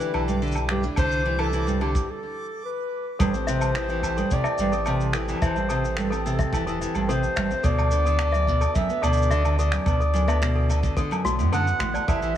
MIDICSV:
0, 0, Header, 1, 8, 480
1, 0, Start_track
1, 0, Tempo, 555556
1, 841, Time_signature, 4, 2, 24, 8
1, 10689, End_track
2, 0, Start_track
2, 0, Title_t, "Synth texture"
2, 0, Program_c, 0, 99
2, 0, Note_on_c, 0, 86, 78
2, 1800, Note_off_c, 0, 86, 0
2, 10689, End_track
3, 0, Start_track
3, 0, Title_t, "Clarinet"
3, 0, Program_c, 1, 71
3, 0, Note_on_c, 1, 71, 87
3, 216, Note_off_c, 1, 71, 0
3, 616, Note_on_c, 1, 67, 93
3, 720, Note_off_c, 1, 67, 0
3, 854, Note_on_c, 1, 72, 125
3, 1211, Note_on_c, 1, 69, 108
3, 1224, Note_off_c, 1, 72, 0
3, 1572, Note_on_c, 1, 67, 86
3, 1585, Note_off_c, 1, 69, 0
3, 1820, Note_on_c, 1, 69, 81
3, 1833, Note_off_c, 1, 67, 0
3, 2286, Note_off_c, 1, 69, 0
3, 2291, Note_on_c, 1, 71, 86
3, 2732, Note_off_c, 1, 71, 0
3, 2776, Note_on_c, 1, 72, 102
3, 3740, Note_on_c, 1, 74, 102
3, 3753, Note_off_c, 1, 72, 0
3, 4450, Note_off_c, 1, 74, 0
3, 4687, Note_on_c, 1, 72, 97
3, 5159, Note_on_c, 1, 69, 83
3, 5172, Note_off_c, 1, 72, 0
3, 5400, Note_off_c, 1, 69, 0
3, 5408, Note_on_c, 1, 69, 88
3, 6123, Note_on_c, 1, 72, 96
3, 6136, Note_off_c, 1, 69, 0
3, 6609, Note_on_c, 1, 74, 119
3, 6622, Note_off_c, 1, 72, 0
3, 7565, Note_on_c, 1, 76, 110
3, 7578, Note_off_c, 1, 74, 0
3, 7802, Note_on_c, 1, 74, 114
3, 7815, Note_off_c, 1, 76, 0
3, 8281, Note_off_c, 1, 74, 0
3, 8287, Note_on_c, 1, 74, 103
3, 9696, Note_off_c, 1, 74, 0
3, 9970, Note_on_c, 1, 78, 110
3, 10412, Note_off_c, 1, 78, 0
3, 10437, Note_on_c, 1, 76, 122
3, 10689, Note_off_c, 1, 76, 0
3, 10689, End_track
4, 0, Start_track
4, 0, Title_t, "Toy piano"
4, 0, Program_c, 2, 8
4, 2758, Note_on_c, 2, 69, 77
4, 2873, Note_off_c, 2, 69, 0
4, 2998, Note_on_c, 2, 76, 98
4, 3113, Note_off_c, 2, 76, 0
4, 3237, Note_on_c, 2, 69, 81
4, 3353, Note_off_c, 2, 69, 0
4, 3605, Note_on_c, 2, 69, 76
4, 3717, Note_off_c, 2, 69, 0
4, 3836, Note_on_c, 2, 76, 102
4, 3952, Note_off_c, 2, 76, 0
4, 4078, Note_on_c, 2, 69, 73
4, 4193, Note_off_c, 2, 69, 0
4, 4445, Note_on_c, 2, 69, 72
4, 4557, Note_off_c, 2, 69, 0
4, 4684, Note_on_c, 2, 76, 101
4, 4796, Note_off_c, 2, 76, 0
4, 4913, Note_on_c, 2, 69, 73
4, 5031, Note_off_c, 2, 69, 0
4, 5274, Note_on_c, 2, 69, 76
4, 5391, Note_off_c, 2, 69, 0
4, 5521, Note_on_c, 2, 76, 97
4, 5635, Note_off_c, 2, 76, 0
4, 5760, Note_on_c, 2, 69, 83
4, 5874, Note_off_c, 2, 69, 0
4, 6124, Note_on_c, 2, 69, 83
4, 6236, Note_off_c, 2, 69, 0
4, 6362, Note_on_c, 2, 76, 102
4, 6475, Note_off_c, 2, 76, 0
4, 6596, Note_on_c, 2, 69, 85
4, 6712, Note_off_c, 2, 69, 0
4, 6958, Note_on_c, 2, 69, 78
4, 7073, Note_off_c, 2, 69, 0
4, 7191, Note_on_c, 2, 76, 105
4, 7310, Note_off_c, 2, 76, 0
4, 7437, Note_on_c, 2, 69, 77
4, 7553, Note_off_c, 2, 69, 0
4, 7793, Note_on_c, 2, 69, 81
4, 7911, Note_off_c, 2, 69, 0
4, 8040, Note_on_c, 2, 76, 105
4, 8154, Note_off_c, 2, 76, 0
4, 8285, Note_on_c, 2, 69, 78
4, 8397, Note_off_c, 2, 69, 0
4, 8642, Note_on_c, 2, 69, 74
4, 8755, Note_off_c, 2, 69, 0
4, 8883, Note_on_c, 2, 76, 95
4, 8996, Note_off_c, 2, 76, 0
4, 9120, Note_on_c, 2, 69, 72
4, 9234, Note_off_c, 2, 69, 0
4, 9476, Note_on_c, 2, 69, 86
4, 9592, Note_off_c, 2, 69, 0
4, 9718, Note_on_c, 2, 66, 101
4, 9833, Note_off_c, 2, 66, 0
4, 9956, Note_on_c, 2, 69, 99
4, 10072, Note_off_c, 2, 69, 0
4, 10191, Note_on_c, 2, 66, 78
4, 10309, Note_off_c, 2, 66, 0
4, 10315, Note_on_c, 2, 74, 72
4, 10386, Note_off_c, 2, 74, 0
4, 10436, Note_on_c, 2, 69, 80
4, 10552, Note_off_c, 2, 69, 0
4, 10689, End_track
5, 0, Start_track
5, 0, Title_t, "Harmonium"
5, 0, Program_c, 3, 20
5, 0, Note_on_c, 3, 50, 72
5, 0, Note_on_c, 3, 64, 68
5, 0, Note_on_c, 3, 67, 89
5, 806, Note_off_c, 3, 64, 0
5, 850, Note_on_c, 3, 64, 66
5, 855, Note_on_c, 3, 60, 66
5, 1772, Note_off_c, 3, 67, 0
5, 1773, Note_off_c, 3, 50, 0
5, 1796, Note_off_c, 3, 64, 0
5, 1798, Note_off_c, 3, 60, 0
5, 2760, Note_on_c, 3, 60, 69
5, 2761, Note_on_c, 3, 69, 84
5, 2765, Note_on_c, 3, 52, 80
5, 2765, Note_on_c, 3, 67, 73
5, 6566, Note_off_c, 3, 60, 0
5, 6568, Note_off_c, 3, 52, 0
5, 6568, Note_off_c, 3, 67, 0
5, 6604, Note_on_c, 3, 50, 73
5, 6607, Note_on_c, 3, 66, 77
5, 6608, Note_on_c, 3, 59, 73
5, 10406, Note_off_c, 3, 69, 0
5, 10407, Note_off_c, 3, 50, 0
5, 10409, Note_off_c, 3, 66, 0
5, 10410, Note_off_c, 3, 59, 0
5, 10439, Note_on_c, 3, 52, 79
5, 10440, Note_on_c, 3, 60, 74
5, 10440, Note_on_c, 3, 67, 71
5, 10441, Note_on_c, 3, 69, 84
5, 10689, Note_off_c, 3, 52, 0
5, 10689, Note_off_c, 3, 60, 0
5, 10689, Note_off_c, 3, 67, 0
5, 10689, Note_off_c, 3, 69, 0
5, 10689, End_track
6, 0, Start_track
6, 0, Title_t, "Nylon-string guitar"
6, 0, Program_c, 4, 24
6, 0, Note_on_c, 4, 52, 74
6, 107, Note_off_c, 4, 52, 0
6, 119, Note_on_c, 4, 52, 71
6, 227, Note_off_c, 4, 52, 0
6, 241, Note_on_c, 4, 43, 71
6, 349, Note_off_c, 4, 43, 0
6, 363, Note_on_c, 4, 50, 86
6, 476, Note_off_c, 4, 50, 0
6, 603, Note_on_c, 4, 43, 97
6, 710, Note_off_c, 4, 43, 0
6, 723, Note_on_c, 4, 62, 76
6, 835, Note_off_c, 4, 62, 0
6, 841, Note_on_c, 4, 50, 100
6, 1069, Note_off_c, 4, 50, 0
6, 1084, Note_on_c, 4, 52, 78
6, 1188, Note_off_c, 4, 52, 0
6, 1198, Note_on_c, 4, 52, 72
6, 1307, Note_off_c, 4, 52, 0
6, 1323, Note_on_c, 4, 52, 82
6, 1430, Note_off_c, 4, 52, 0
6, 1443, Note_on_c, 4, 43, 72
6, 1550, Note_off_c, 4, 43, 0
6, 1564, Note_on_c, 4, 50, 73
6, 1676, Note_off_c, 4, 50, 0
6, 2764, Note_on_c, 4, 43, 92
6, 2870, Note_off_c, 4, 43, 0
6, 2888, Note_on_c, 4, 60, 70
6, 2998, Note_off_c, 4, 60, 0
6, 3010, Note_on_c, 4, 48, 101
6, 3233, Note_off_c, 4, 48, 0
6, 3247, Note_on_c, 4, 52, 85
6, 3358, Note_off_c, 4, 52, 0
6, 3367, Note_on_c, 4, 52, 77
6, 3472, Note_off_c, 4, 52, 0
6, 3488, Note_on_c, 4, 52, 72
6, 3592, Note_off_c, 4, 52, 0
6, 3608, Note_on_c, 4, 43, 83
6, 3712, Note_off_c, 4, 43, 0
6, 3729, Note_on_c, 4, 48, 78
6, 3838, Note_off_c, 4, 48, 0
6, 3973, Note_on_c, 4, 43, 100
6, 4075, Note_off_c, 4, 43, 0
6, 4086, Note_on_c, 4, 60, 70
6, 4197, Note_off_c, 4, 60, 0
6, 4207, Note_on_c, 4, 48, 103
6, 4432, Note_off_c, 4, 48, 0
6, 4443, Note_on_c, 4, 52, 77
6, 4556, Note_off_c, 4, 52, 0
6, 4569, Note_on_c, 4, 52, 74
6, 4672, Note_off_c, 4, 52, 0
6, 4685, Note_on_c, 4, 52, 82
6, 4791, Note_off_c, 4, 52, 0
6, 4803, Note_on_c, 4, 43, 70
6, 4910, Note_off_c, 4, 43, 0
6, 4926, Note_on_c, 4, 48, 78
6, 5037, Note_off_c, 4, 48, 0
6, 5167, Note_on_c, 4, 43, 108
6, 5271, Note_off_c, 4, 43, 0
6, 5289, Note_on_c, 4, 60, 78
6, 5399, Note_off_c, 4, 60, 0
6, 5406, Note_on_c, 4, 48, 96
6, 5631, Note_off_c, 4, 48, 0
6, 5641, Note_on_c, 4, 52, 79
6, 5755, Note_off_c, 4, 52, 0
6, 5764, Note_on_c, 4, 52, 80
6, 5870, Note_off_c, 4, 52, 0
6, 5886, Note_on_c, 4, 52, 71
6, 5991, Note_off_c, 4, 52, 0
6, 6006, Note_on_c, 4, 43, 73
6, 6111, Note_off_c, 4, 43, 0
6, 6126, Note_on_c, 4, 48, 86
6, 6237, Note_off_c, 4, 48, 0
6, 6365, Note_on_c, 4, 43, 110
6, 6470, Note_off_c, 4, 43, 0
6, 6486, Note_on_c, 4, 60, 78
6, 6597, Note_off_c, 4, 60, 0
6, 6602, Note_on_c, 4, 47, 99
6, 6829, Note_off_c, 4, 47, 0
6, 6843, Note_on_c, 4, 50, 76
6, 6956, Note_off_c, 4, 50, 0
6, 6968, Note_on_c, 4, 50, 73
6, 7072, Note_off_c, 4, 50, 0
6, 7084, Note_on_c, 4, 50, 90
6, 7190, Note_off_c, 4, 50, 0
6, 7205, Note_on_c, 4, 42, 80
6, 7311, Note_off_c, 4, 42, 0
6, 7330, Note_on_c, 4, 47, 77
6, 7439, Note_off_c, 4, 47, 0
6, 7569, Note_on_c, 4, 42, 89
6, 7673, Note_off_c, 4, 42, 0
6, 7688, Note_on_c, 4, 59, 78
6, 7798, Note_off_c, 4, 59, 0
6, 7807, Note_on_c, 4, 47, 101
6, 8032, Note_off_c, 4, 47, 0
6, 8045, Note_on_c, 4, 50, 89
6, 8157, Note_off_c, 4, 50, 0
6, 8167, Note_on_c, 4, 50, 78
6, 8271, Note_off_c, 4, 50, 0
6, 8284, Note_on_c, 4, 50, 77
6, 8390, Note_off_c, 4, 50, 0
6, 8404, Note_on_c, 4, 42, 75
6, 8510, Note_off_c, 4, 42, 0
6, 8519, Note_on_c, 4, 47, 84
6, 8633, Note_off_c, 4, 47, 0
6, 8757, Note_on_c, 4, 42, 104
6, 8867, Note_off_c, 4, 42, 0
6, 8878, Note_on_c, 4, 59, 78
6, 8993, Note_off_c, 4, 59, 0
6, 9000, Note_on_c, 4, 47, 110
6, 9228, Note_off_c, 4, 47, 0
6, 9239, Note_on_c, 4, 50, 72
6, 9346, Note_off_c, 4, 50, 0
6, 9356, Note_on_c, 4, 50, 76
6, 9466, Note_off_c, 4, 50, 0
6, 9481, Note_on_c, 4, 50, 72
6, 9588, Note_off_c, 4, 50, 0
6, 9599, Note_on_c, 4, 42, 75
6, 9708, Note_off_c, 4, 42, 0
6, 9717, Note_on_c, 4, 45, 71
6, 9826, Note_off_c, 4, 45, 0
6, 9839, Note_on_c, 4, 45, 76
6, 9948, Note_off_c, 4, 45, 0
6, 9959, Note_on_c, 4, 50, 101
6, 10067, Note_off_c, 4, 50, 0
6, 10199, Note_on_c, 4, 45, 78
6, 10308, Note_off_c, 4, 45, 0
6, 10437, Note_on_c, 4, 52, 85
6, 10553, Note_off_c, 4, 52, 0
6, 10562, Note_on_c, 4, 52, 77
6, 10665, Note_off_c, 4, 52, 0
6, 10689, End_track
7, 0, Start_track
7, 0, Title_t, "Sub bass"
7, 0, Program_c, 5, 38
7, 119, Note_on_c, 5, 35, 82
7, 769, Note_off_c, 5, 35, 0
7, 839, Note_on_c, 5, 36, 87
7, 1729, Note_off_c, 5, 36, 0
7, 2762, Note_on_c, 5, 33, 94
7, 3651, Note_off_c, 5, 33, 0
7, 3957, Note_on_c, 5, 33, 89
7, 4608, Note_off_c, 5, 33, 0
7, 4680, Note_on_c, 5, 33, 97
7, 5569, Note_off_c, 5, 33, 0
7, 5639, Note_on_c, 5, 28, 97
7, 5929, Note_off_c, 5, 28, 0
7, 6001, Note_on_c, 5, 33, 104
7, 6290, Note_off_c, 5, 33, 0
7, 6365, Note_on_c, 5, 33, 100
7, 6514, Note_off_c, 5, 33, 0
7, 6600, Note_on_c, 5, 38, 99
7, 7489, Note_off_c, 5, 38, 0
7, 7796, Note_on_c, 5, 38, 86
7, 8447, Note_off_c, 5, 38, 0
7, 8517, Note_on_c, 5, 38, 102
7, 9408, Note_off_c, 5, 38, 0
7, 9715, Note_on_c, 5, 35, 89
7, 9842, Note_on_c, 5, 42, 110
7, 9855, Note_off_c, 5, 35, 0
7, 10131, Note_off_c, 5, 42, 0
7, 10194, Note_on_c, 5, 33, 95
7, 10349, Note_off_c, 5, 33, 0
7, 10435, Note_on_c, 5, 33, 99
7, 10689, Note_off_c, 5, 33, 0
7, 10689, End_track
8, 0, Start_track
8, 0, Title_t, "Drums"
8, 7, Note_on_c, 9, 82, 51
8, 93, Note_off_c, 9, 82, 0
8, 121, Note_on_c, 9, 77, 85
8, 208, Note_off_c, 9, 77, 0
8, 245, Note_on_c, 9, 82, 62
8, 331, Note_off_c, 9, 82, 0
8, 367, Note_on_c, 9, 82, 23
8, 406, Note_off_c, 9, 82, 0
8, 406, Note_on_c, 9, 82, 34
8, 445, Note_off_c, 9, 82, 0
8, 445, Note_on_c, 9, 82, 46
8, 478, Note_on_c, 9, 77, 71
8, 484, Note_off_c, 9, 82, 0
8, 484, Note_on_c, 9, 82, 42
8, 564, Note_off_c, 9, 77, 0
8, 570, Note_off_c, 9, 82, 0
8, 594, Note_on_c, 9, 26, 68
8, 680, Note_off_c, 9, 26, 0
8, 719, Note_on_c, 9, 82, 70
8, 805, Note_off_c, 9, 82, 0
8, 831, Note_on_c, 9, 77, 81
8, 839, Note_on_c, 9, 82, 63
8, 841, Note_on_c, 9, 36, 115
8, 918, Note_off_c, 9, 77, 0
8, 926, Note_off_c, 9, 82, 0
8, 927, Note_off_c, 9, 36, 0
8, 964, Note_on_c, 9, 82, 45
8, 1050, Note_off_c, 9, 82, 0
8, 1198, Note_on_c, 9, 77, 85
8, 1285, Note_off_c, 9, 77, 0
8, 1322, Note_on_c, 9, 82, 56
8, 1409, Note_off_c, 9, 82, 0
8, 1451, Note_on_c, 9, 82, 53
8, 1537, Note_off_c, 9, 82, 0
8, 1566, Note_on_c, 9, 77, 66
8, 1652, Note_off_c, 9, 77, 0
8, 1685, Note_on_c, 9, 36, 87
8, 1687, Note_on_c, 9, 82, 61
8, 1772, Note_off_c, 9, 36, 0
8, 1774, Note_off_c, 9, 82, 0
8, 2763, Note_on_c, 9, 36, 119
8, 2767, Note_on_c, 9, 77, 69
8, 2768, Note_on_c, 9, 82, 61
8, 2850, Note_off_c, 9, 36, 0
8, 2854, Note_off_c, 9, 77, 0
8, 2854, Note_off_c, 9, 82, 0
8, 2887, Note_on_c, 9, 82, 40
8, 2973, Note_off_c, 9, 82, 0
8, 3007, Note_on_c, 9, 82, 81
8, 3093, Note_off_c, 9, 82, 0
8, 3121, Note_on_c, 9, 77, 78
8, 3123, Note_on_c, 9, 82, 54
8, 3207, Note_off_c, 9, 77, 0
8, 3209, Note_off_c, 9, 82, 0
8, 3240, Note_on_c, 9, 26, 81
8, 3249, Note_on_c, 9, 82, 51
8, 3327, Note_off_c, 9, 26, 0
8, 3336, Note_off_c, 9, 82, 0
8, 3361, Note_on_c, 9, 82, 37
8, 3447, Note_off_c, 9, 82, 0
8, 3483, Note_on_c, 9, 36, 56
8, 3483, Note_on_c, 9, 77, 70
8, 3489, Note_on_c, 9, 82, 80
8, 3569, Note_off_c, 9, 36, 0
8, 3570, Note_off_c, 9, 77, 0
8, 3575, Note_off_c, 9, 82, 0
8, 3607, Note_on_c, 9, 82, 49
8, 3693, Note_off_c, 9, 82, 0
8, 3722, Note_on_c, 9, 82, 68
8, 3726, Note_on_c, 9, 36, 106
8, 3809, Note_off_c, 9, 82, 0
8, 3812, Note_off_c, 9, 36, 0
8, 3835, Note_on_c, 9, 77, 84
8, 3847, Note_on_c, 9, 82, 39
8, 3921, Note_off_c, 9, 77, 0
8, 3933, Note_off_c, 9, 82, 0
8, 3958, Note_on_c, 9, 82, 95
8, 4044, Note_off_c, 9, 82, 0
8, 4081, Note_on_c, 9, 82, 43
8, 4168, Note_off_c, 9, 82, 0
8, 4196, Note_on_c, 9, 77, 77
8, 4199, Note_on_c, 9, 82, 56
8, 4282, Note_off_c, 9, 77, 0
8, 4285, Note_off_c, 9, 82, 0
8, 4323, Note_on_c, 9, 82, 38
8, 4410, Note_off_c, 9, 82, 0
8, 4435, Note_on_c, 9, 26, 67
8, 4442, Note_on_c, 9, 82, 80
8, 4521, Note_off_c, 9, 26, 0
8, 4528, Note_off_c, 9, 82, 0
8, 4565, Note_on_c, 9, 82, 55
8, 4566, Note_on_c, 9, 77, 38
8, 4605, Note_off_c, 9, 77, 0
8, 4605, Note_on_c, 9, 77, 45
8, 4645, Note_off_c, 9, 77, 0
8, 4645, Note_on_c, 9, 77, 48
8, 4652, Note_off_c, 9, 82, 0
8, 4681, Note_on_c, 9, 36, 124
8, 4684, Note_off_c, 9, 77, 0
8, 4684, Note_on_c, 9, 77, 60
8, 4685, Note_on_c, 9, 82, 53
8, 4726, Note_off_c, 9, 77, 0
8, 4726, Note_on_c, 9, 77, 67
8, 4764, Note_off_c, 9, 77, 0
8, 4764, Note_on_c, 9, 77, 70
8, 4768, Note_off_c, 9, 36, 0
8, 4771, Note_off_c, 9, 82, 0
8, 4811, Note_on_c, 9, 82, 37
8, 4850, Note_off_c, 9, 77, 0
8, 4898, Note_off_c, 9, 82, 0
8, 4920, Note_on_c, 9, 77, 73
8, 4923, Note_on_c, 9, 82, 88
8, 5007, Note_off_c, 9, 77, 0
8, 5010, Note_off_c, 9, 82, 0
8, 5052, Note_on_c, 9, 82, 53
8, 5138, Note_off_c, 9, 82, 0
8, 5155, Note_on_c, 9, 26, 82
8, 5175, Note_on_c, 9, 82, 57
8, 5242, Note_off_c, 9, 26, 0
8, 5261, Note_off_c, 9, 82, 0
8, 5287, Note_on_c, 9, 77, 68
8, 5293, Note_on_c, 9, 82, 46
8, 5374, Note_off_c, 9, 77, 0
8, 5379, Note_off_c, 9, 82, 0
8, 5413, Note_on_c, 9, 82, 83
8, 5500, Note_off_c, 9, 82, 0
8, 5519, Note_on_c, 9, 36, 108
8, 5525, Note_on_c, 9, 82, 49
8, 5605, Note_off_c, 9, 36, 0
8, 5612, Note_off_c, 9, 82, 0
8, 5639, Note_on_c, 9, 36, 122
8, 5647, Note_on_c, 9, 77, 79
8, 5653, Note_on_c, 9, 82, 68
8, 5725, Note_off_c, 9, 36, 0
8, 5733, Note_off_c, 9, 77, 0
8, 5740, Note_off_c, 9, 82, 0
8, 5772, Note_on_c, 9, 82, 44
8, 5858, Note_off_c, 9, 82, 0
8, 5892, Note_on_c, 9, 82, 88
8, 5978, Note_off_c, 9, 82, 0
8, 6002, Note_on_c, 9, 77, 67
8, 6003, Note_on_c, 9, 82, 45
8, 6089, Note_off_c, 9, 77, 0
8, 6090, Note_off_c, 9, 82, 0
8, 6133, Note_on_c, 9, 82, 59
8, 6220, Note_off_c, 9, 82, 0
8, 6248, Note_on_c, 9, 82, 42
8, 6335, Note_off_c, 9, 82, 0
8, 6365, Note_on_c, 9, 77, 77
8, 6365, Note_on_c, 9, 82, 86
8, 6366, Note_on_c, 9, 36, 69
8, 6367, Note_on_c, 9, 26, 77
8, 6452, Note_off_c, 9, 36, 0
8, 6452, Note_off_c, 9, 77, 0
8, 6452, Note_off_c, 9, 82, 0
8, 6454, Note_off_c, 9, 26, 0
8, 6489, Note_on_c, 9, 82, 51
8, 6575, Note_off_c, 9, 82, 0
8, 6598, Note_on_c, 9, 82, 64
8, 6600, Note_on_c, 9, 36, 120
8, 6685, Note_off_c, 9, 82, 0
8, 6687, Note_off_c, 9, 36, 0
8, 6726, Note_on_c, 9, 77, 74
8, 6727, Note_on_c, 9, 82, 40
8, 6812, Note_off_c, 9, 77, 0
8, 6813, Note_off_c, 9, 82, 0
8, 6837, Note_on_c, 9, 82, 84
8, 6923, Note_off_c, 9, 82, 0
8, 6968, Note_on_c, 9, 82, 51
8, 7054, Note_off_c, 9, 82, 0
8, 7072, Note_on_c, 9, 77, 74
8, 7074, Note_on_c, 9, 26, 74
8, 7082, Note_on_c, 9, 82, 62
8, 7158, Note_off_c, 9, 77, 0
8, 7161, Note_off_c, 9, 26, 0
8, 7168, Note_off_c, 9, 82, 0
8, 7208, Note_on_c, 9, 82, 45
8, 7295, Note_off_c, 9, 82, 0
8, 7322, Note_on_c, 9, 36, 61
8, 7333, Note_on_c, 9, 82, 74
8, 7408, Note_off_c, 9, 36, 0
8, 7420, Note_off_c, 9, 82, 0
8, 7441, Note_on_c, 9, 77, 70
8, 7443, Note_on_c, 9, 82, 52
8, 7528, Note_off_c, 9, 77, 0
8, 7529, Note_off_c, 9, 82, 0
8, 7561, Note_on_c, 9, 82, 66
8, 7564, Note_on_c, 9, 36, 119
8, 7647, Note_off_c, 9, 82, 0
8, 7651, Note_off_c, 9, 36, 0
8, 7686, Note_on_c, 9, 82, 43
8, 7773, Note_off_c, 9, 82, 0
8, 7800, Note_on_c, 9, 77, 89
8, 7807, Note_on_c, 9, 82, 84
8, 7887, Note_off_c, 9, 77, 0
8, 7888, Note_off_c, 9, 82, 0
8, 7888, Note_on_c, 9, 82, 65
8, 7919, Note_off_c, 9, 82, 0
8, 7919, Note_on_c, 9, 82, 47
8, 7967, Note_off_c, 9, 82, 0
8, 7967, Note_on_c, 9, 82, 53
8, 8045, Note_off_c, 9, 82, 0
8, 8045, Note_on_c, 9, 82, 60
8, 8132, Note_off_c, 9, 82, 0
8, 8164, Note_on_c, 9, 82, 37
8, 8165, Note_on_c, 9, 77, 72
8, 8250, Note_off_c, 9, 82, 0
8, 8251, Note_off_c, 9, 77, 0
8, 8287, Note_on_c, 9, 82, 72
8, 8373, Note_off_c, 9, 82, 0
8, 8396, Note_on_c, 9, 26, 81
8, 8407, Note_on_c, 9, 82, 53
8, 8483, Note_off_c, 9, 26, 0
8, 8494, Note_off_c, 9, 82, 0
8, 8518, Note_on_c, 9, 77, 75
8, 8520, Note_on_c, 9, 36, 120
8, 8530, Note_on_c, 9, 82, 60
8, 8604, Note_off_c, 9, 77, 0
8, 8606, Note_off_c, 9, 36, 0
8, 8616, Note_off_c, 9, 82, 0
8, 8648, Note_on_c, 9, 82, 40
8, 8735, Note_off_c, 9, 82, 0
8, 8772, Note_on_c, 9, 82, 89
8, 8858, Note_off_c, 9, 82, 0
8, 8886, Note_on_c, 9, 77, 79
8, 8891, Note_on_c, 9, 82, 53
8, 8972, Note_off_c, 9, 77, 0
8, 8978, Note_off_c, 9, 82, 0
8, 9008, Note_on_c, 9, 26, 67
8, 9010, Note_on_c, 9, 82, 63
8, 9094, Note_off_c, 9, 26, 0
8, 9096, Note_off_c, 9, 82, 0
8, 9245, Note_on_c, 9, 77, 66
8, 9247, Note_on_c, 9, 82, 79
8, 9253, Note_off_c, 9, 82, 0
8, 9253, Note_on_c, 9, 82, 35
8, 9331, Note_off_c, 9, 77, 0
8, 9339, Note_off_c, 9, 82, 0
8, 9361, Note_on_c, 9, 36, 104
8, 9363, Note_on_c, 9, 82, 54
8, 9447, Note_off_c, 9, 36, 0
8, 9450, Note_off_c, 9, 82, 0
8, 9475, Note_on_c, 9, 36, 108
8, 9480, Note_on_c, 9, 82, 59
8, 9561, Note_off_c, 9, 36, 0
8, 9567, Note_off_c, 9, 82, 0
8, 9606, Note_on_c, 9, 82, 38
8, 9609, Note_on_c, 9, 77, 76
8, 9693, Note_off_c, 9, 82, 0
8, 9695, Note_off_c, 9, 77, 0
8, 9730, Note_on_c, 9, 82, 97
8, 9817, Note_off_c, 9, 82, 0
8, 9846, Note_on_c, 9, 82, 50
8, 9932, Note_off_c, 9, 82, 0
8, 9957, Note_on_c, 9, 77, 68
8, 9967, Note_on_c, 9, 82, 58
8, 10043, Note_off_c, 9, 77, 0
8, 10053, Note_off_c, 9, 82, 0
8, 10086, Note_on_c, 9, 82, 41
8, 10172, Note_off_c, 9, 82, 0
8, 10195, Note_on_c, 9, 36, 60
8, 10196, Note_on_c, 9, 26, 73
8, 10196, Note_on_c, 9, 82, 75
8, 10282, Note_off_c, 9, 36, 0
8, 10283, Note_off_c, 9, 26, 0
8, 10283, Note_off_c, 9, 82, 0
8, 10323, Note_on_c, 9, 77, 72
8, 10325, Note_on_c, 9, 82, 48
8, 10410, Note_off_c, 9, 77, 0
8, 10411, Note_off_c, 9, 82, 0
8, 10438, Note_on_c, 9, 36, 124
8, 10444, Note_on_c, 9, 77, 74
8, 10446, Note_on_c, 9, 82, 66
8, 10524, Note_off_c, 9, 36, 0
8, 10530, Note_off_c, 9, 77, 0
8, 10532, Note_off_c, 9, 82, 0
8, 10561, Note_on_c, 9, 82, 37
8, 10647, Note_off_c, 9, 82, 0
8, 10689, End_track
0, 0, End_of_file